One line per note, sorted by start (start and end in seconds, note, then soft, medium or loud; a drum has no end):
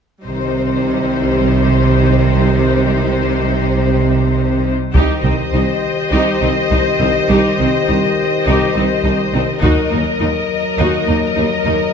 0.25 4.71 C2 soft
0.25 4.72 C3 soft
0.25 4.62 D#3 soft
0.25 4.71 G3 soft
0.25 4.71 D#4 soft
0.25 4.61 G4 soft
0.25 4.72 C5 soft
4.95 5.03 C2 soft
4.95 5.04 C2 soft
4.95 9.60 D#3 soft
4.95 5.23 D#4 soft
4.95 5.23 G4 soft
4.95 9.60 G4 soft
4.95 9.59 C5 soft
4.95 9.59 D#5 soft
4.95 taiko soft
5.23 5.31 C2 soft
5.23 5.32 C2 soft
5.23 5.32 C4 soft
5.23 5.33 D#4 soft
5.53 5.61 C2 soft
5.53 5.63 C2 soft
5.53 5.62 D#4 soft
6.12 6.20 C2 soft
6.12 6.21 C2 soft
6.12 6.40 D#4 soft
6.12 6.40 G4 soft
6.42 6.50 C2 soft
6.42 6.51 C2 soft
6.42 6.50 C4 soft
6.42 6.50 D#4 soft
6.71 6.79 C2 soft
6.71 6.81 C2 soft
6.71 6.79 D#4 soft
7.00 7.08 C2 soft
7.00 7.09 C2 soft
7.00 7.09 C4 soft
7.00 7.09 D#4 soft
7.30 7.38 C2 soft
7.30 7.39 C2 soft
7.30 7.57 D#4 soft
7.30 7.57 G4 soft
7.59 7.67 C2 soft
7.59 7.69 C2 soft
7.59 7.67 C4 soft
7.59 7.67 D#4 soft
7.88 7.96 C2 soft
7.88 7.99 C2 soft
7.88 7.97 D#4 soft
8.46 8.54 C2 soft
8.46 8.56 C2 soft
8.46 8.73 D#4 soft
8.46 8.73 G4 soft
8.75 8.83 C2 soft
8.75 8.85 C2 soft
8.75 8.84 C4 soft
8.75 8.84 D#4 soft
9.04 9.12 C2 soft
9.04 9.13 C2 soft
9.04 9.13 D#4 soft
9.34 9.42 C2 soft
9.34 9.42 C4 soft
9.34 9.43 D#4 soft
9.62 9.70 D#2 soft
9.62 9.72 D#2 soft
9.62 11.93 F#3 soft
9.62 9.90 D#4 soft
9.62 9.90 F#4 soft
9.62 11.93 A#4 soft
9.62 11.93 D#5 soft
9.62 taiko soft
9.91 10.00 D#2 soft
9.91 10.01 D#2 soft
9.91 9.99 A#3 soft
9.91 10.00 D#4 soft
10.20 10.29 D#2 soft
10.20 10.30 D#2 soft
10.20 10.28 D#4 soft
10.79 10.87 D#2 soft
10.79 10.88 D#2 soft
10.79 11.06 D#4 soft
10.79 11.06 F#4 soft
11.07 11.16 D#2 soft
11.07 11.17 D#2 soft
11.07 11.15 A#3 soft
11.07 11.15 D#4 soft
11.37 11.45 D#2 soft
11.37 11.45 D#4 soft
11.66 11.74 D#2 soft
11.66 11.75 D#2 soft
11.66 11.74 A#3 soft
11.66 11.74 D#4 soft